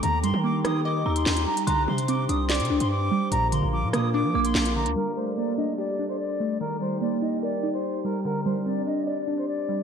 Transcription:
0.00 0.25 D#2 loud
0.00 1.06 D#3 loud
0.00 1.66 D#4 medium
0.00 3.28 G4 medium
0.00 3.28 G5 medium
0.00 0.19 A#5 loud
0.00 closed hi-hat medium
0.23 0.33 G2 loud
0.23 1.26 G3 medium
0.23 0.39 C6 loud
0.23 closed hi-hat medium
0.34 0.63 D#3 loud
0.44 1.47 A#3 medium
0.44 0.60 D6 medium
0.65 1.04 D#3 loud
0.65 1.05 D#4 medium
0.65 0.81 D#6 medium
0.65 cross-stick loud
0.65 closed hi-hat medium
0.85 1.67 D#5 loud
0.85 1.14 D6 medium
1.06 1.25 D#2 loud
1.06 1.67 D#4 medium
1.06 1.64 A#5 medium
1.16 1.45 C6 medium
1.16 closed hi-hat medium
1.26 1.46 D#2 loud
1.26 snare loud
1.26 clap medium
1.36 closed hi-hat medium
1.47 1.67 G3 medium
1.47 1.63 A#5 medium
1.57 closed hi-hat medium
1.67 1.87 C2 loud
1.67 2.70 D3 loud
1.67 3.30 D4 medium
1.67 3.30 C5 medium
1.67 1.83 A#5 loud
1.67 3.28 C6 loud
1.67 closed hi-hat medium
1.88 2.27 C3 loud
1.88 2.91 G3 medium
1.88 2.04 C6 medium
1.98 closed hi-hat medium
2.08 3.11 C4 medium
2.08 2.24 D6 medium
2.08 closed hi-hat medium
2.29 2.61 C2 loud
2.29 2.69 D4 medium
2.29 2.45 D#6 medium
2.29 closed hi-hat medium
2.49 3.32 D5 loud
2.49 2.79 D6 medium
2.49 snare loud
2.49 clap medium
2.49 closed hi-hat medium
2.55 closed hi-hat medium
2.60 2.72 C3 loud
2.60 closed hi-hat medium
2.65 closed hi-hat soft
2.70 2.80 C2 loud
2.70 3.32 D4 medium
2.80 3.10 G2 loud
2.80 2.88 C6 medium
2.80 closed hi-hat medium
2.90 3.29 D6 medium
3.11 3.32 G3 medium
3.32 3.61 A#1 loud
3.32 4.34 A#2 medium
3.32 4.94 D4 medium
3.32 4.94 F4 medium
3.32 4.94 A#4 medium
3.32 4.94 F5 medium
3.32 3.48 A#5 loud
3.32 closed hi-hat medium
3.52 4.55 D3 medium
3.52 3.68 C6 medium
3.52 closed hi-hat medium
3.63 3.85 A#1 loud
3.73 4.76 F3 medium
3.73 3.89 D6 medium
3.83 3.93 A#2 loud
3.93 4.26 A#2 loud
3.93 4.33 A#3 medium
3.93 4.09 D#6 medium
3.93 cross-stick loud
3.93 closed hi-hat medium
4.14 4.96 D4 loud
4.14 4.43 D6 medium
4.24 4.34 F3 loud
4.34 4.54 A#1 loud
4.34 4.96 A#3 medium
4.34 4.93 D6 medium
4.45 4.74 C6 medium
4.45 closed hi-hat medium
4.55 4.87 A#1 loud
4.55 snare loud
4.55 clap medium
4.65 closed hi-hat medium
4.76 4.96 D3 medium
4.76 4.92 A#5 medium
4.86 4.96 D2 loud
4.86 closed hi-hat medium
4.96 5.99 G3 medium
4.96 8.22 G3 medium
4.96 9.83 G4 medium
4.96 6.59 A4 medium
4.96 5.12 A#4 loud
4.96 6.59 D5 medium
4.96 closed hi-hat medium
5.16 6.20 A3 medium
5.16 5.33 C5 medium
5.27 closed hi-hat medium
5.37 6.40 A#3 medium
5.37 5.53 D5 medium
5.37 closed hi-hat medium
5.58 5.98 D4 medium
5.58 5.74 D#5 medium
5.58 closed hi-hat medium
5.78 6.61 G4 loud
5.78 6.07 D5 medium
5.78 closed hi-hat medium
5.84 closed hi-hat medium
5.89 closed hi-hat medium
5.94 closed hi-hat soft
5.99 6.61 D4 medium
6.09 6.17 C5 medium
6.09 closed hi-hat medium
6.20 6.58 D5 medium
6.40 6.61 A3 medium
6.61 7.63 D#3 medium
6.61 8.23 D#4 medium
6.61 6.77 A#4 loud
6.61 8.23 G5 medium
6.61 closed hi-hat medium
6.81 7.84 G3 medium
6.81 6.97 C5 medium
6.81 closed hi-hat medium
7.01 8.04 A#3 medium
7.01 7.18 D5 medium
7.22 7.62 D#4 medium
7.22 7.38 D#5 medium
7.22 closed hi-hat medium
7.43 8.25 A#4 loud
7.43 7.72 D5 medium
7.63 8.25 D#4 medium
7.73 8.03 C5 medium
7.73 closed hi-hat medium
7.94 closed hi-hat medium
8.04 8.25 G3 medium
8.04 8.20 A#4 medium
8.15 closed hi-hat medium
8.25 9.28 D3 medium
8.25 9.83 C4 medium
8.25 9.83 D4 medium
8.25 8.41 A#4 loud
8.25 9.83 D5 medium
8.25 closed hi-hat medium
8.46 9.48 G3 medium
8.46 8.62 C5 medium
8.56 closed hi-hat medium
8.66 9.69 C4 medium
8.66 8.82 D5 medium
8.66 closed hi-hat medium
8.87 9.26 D4 medium
8.87 9.03 D#5 medium
8.87 closed hi-hat medium
9.07 9.83 D5 medium
9.07 9.36 D5 medium
9.07 closed hi-hat medium
9.12 closed hi-hat medium
9.17 closed hi-hat medium
9.23 closed hi-hat soft
9.28 9.83 D4 medium
9.38 9.46 C5 medium
9.38 closed hi-hat medium
9.48 9.83 D5 medium
9.69 9.83 G3 medium

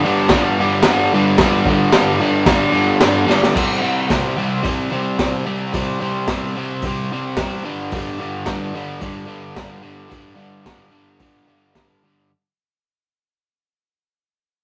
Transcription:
0.04 0.31 G2 medium
0.04 0.31 D3 medium
0.04 0.33 G3 medium
0.29 0.58 G2 medium
0.29 0.60 D3 loud
0.29 kick loud
0.29 snare loud
0.29 crash medium
0.33 0.61 G3 medium
0.59 0.85 G2 medium
0.59 0.86 D3 loud
0.59 0.87 G3 loud
0.83 1.12 G2 medium
0.83 snare loud
0.83 crash medium
0.87 1.13 D3 loud
0.87 1.14 G3 loud
1.14 1.40 G2 medium
1.14 1.40 D3 loud
1.14 1.40 G3 loud
1.38 1.66 G2 loud
1.38 1.67 D3 loud
1.38 1.67 G3 loud
1.38 kick loud
1.38 snare loud
1.38 crash medium
1.65 1.91 G2 medium
1.65 1.92 D3 medium
1.65 1.91 G3 medium
1.65 kick loud
1.92 2.18 G2 loud
1.92 2.19 D3 loud
1.92 2.20 G3 loud
1.92 snare loud
1.92 crash medium
2.19 2.45 G2 medium
2.19 2.46 D3 loud
2.19 2.47 G3 medium
2.46 2.71 G2 medium
2.46 2.72 D3 medium
2.46 2.72 G3 loud
2.46 kick loud
2.46 snare loud
2.46 crash medium
2.72 3.00 G2 medium
2.72 3.00 D3 loud
2.72 3.00 G3 loud
3.01 3.26 G2 loud
3.01 3.27 D3 loud
3.01 3.28 G3 medium
3.01 snare loud
3.01 crash medium
3.27 3.53 G2 medium
3.27 3.53 D3 medium
3.27 3.54 G3 loud
3.27 snare medium
3.43 snare loud
3.54 3.80 C3 medium
3.54 3.81 G3 medium
3.54 3.81 C4 loud
3.54 kick loud
3.54 crash loud
3.81 4.09 C3 medium
3.81 4.09 G3 medium
3.81 4.10 C4 medium
4.09 4.35 C3 medium
4.09 4.37 G3 loud
4.09 4.37 C4 medium
4.09 kick loud
4.09 snare loud
4.09 open hi-hat soft
4.36 4.62 C3 medium
4.36 4.62 G3 medium
4.36 4.63 C4 medium
4.63 4.90 C3 medium
4.63 4.92 G3 loud
4.63 4.91 C4 loud
4.63 kick loud
4.63 open hi-hat medium
4.91 5.17 C3 medium
4.91 5.19 G3 medium
4.91 5.19 C4 medium
5.19 5.44 C3 medium
5.19 5.46 G3 medium
5.19 5.45 C4 medium
5.19 kick loud
5.19 snare loud
5.19 open hi-hat soft
5.46 5.72 C3 medium
5.46 5.74 G3 medium
5.46 5.73 C4 medium
5.73 5.99 C3 medium
5.73 6.00 G3 loud
5.73 6.00 C4 loud
5.73 kick loud
5.73 open hi-hat medium
6.01 6.27 C3 medium
6.01 6.28 G3 medium
6.01 6.28 C4 medium
6.28 6.55 C3 medium
6.28 6.56 G3 medium
6.28 6.56 C4 medium
6.28 kick loud
6.28 snare loud
6.28 open hi-hat medium
6.56 6.83 C3 medium
6.56 6.84 G3 medium
6.56 6.84 C4 medium
6.82 7.11 C3 loud
6.82 7.12 G3 medium
6.82 7.12 C4 loud
6.82 kick loud
6.82 open hi-hat medium
7.12 7.36 C3 medium
7.12 7.38 G3 medium
7.12 7.38 C4 medium
7.37 7.63 C3 medium
7.37 7.65 G3 medium
7.37 7.63 C4 loud
7.37 kick loud
7.37 snare loud
7.37 open hi-hat medium
7.64 7.93 G2 medium
7.64 7.93 D3 loud
7.64 7.94 G3 loud
7.92 8.19 G2 medium
7.92 8.19 D3 medium
7.92 8.21 G3 loud
7.92 kick loud
7.92 open hi-hat medium
8.20 8.46 G2 medium
8.20 8.46 D3 medium
8.20 8.47 G3 medium
8.46 8.74 G2 medium
8.46 8.74 D3 medium
8.46 8.75 G3 medium
8.46 kick loud
8.46 snare loud
8.46 open hi-hat medium
8.74 9.00 G2 medium
8.74 9.00 D3 medium
8.74 9.01 G3 medium
9.00 9.26 G2 medium
9.00 9.27 D3 medium
9.00 9.27 G3 medium
9.00 kick loud
9.00 open hi-hat medium
9.26 9.56 G2 medium
9.26 9.55 D3 medium
9.26 9.56 G3 medium
9.56 9.82 G2 medium
9.56 9.82 D3 medium
9.56 9.82 G3 loud
9.56 kick loud
9.56 snare loud
9.56 open hi-hat soft
9.82 10.08 G2 medium
9.82 10.09 D3 medium
9.82 10.09 G3 medium
10.10 10.35 G2 medium
10.10 10.35 D3 medium
10.10 10.36 G3 loud
10.10 kick loud
10.10 open hi-hat soft
10.36 10.63 G2 medium
10.36 10.64 D3 medium
10.36 10.66 G3 medium
10.65 10.90 G2 medium
10.65 10.90 D3 medium
10.65 10.91 G3 medium
10.65 kick loud
10.65 snare loud
10.65 open hi-hat medium
10.91 11.19 G2 medium
10.91 11.20 D3 medium
10.91 11.20 G3 medium
11.20 11.46 G2 medium
11.20 11.47 D3 medium
11.20 11.48 G3 medium
11.20 kick loud
11.20 open hi-hat medium
11.47 11.73 G2 medium
11.47 11.74 D3 medium
11.47 11.74 G3 medium
11.74 12.03 G2 medium
11.74 12.03 D3 medium
11.74 12.04 G3 medium
11.74 kick loud
11.74 snare loud
11.74 open hi-hat medium
12.04 12.29 G2 medium
12.04 12.29 D3 medium
12.04 12.29 G3 medium

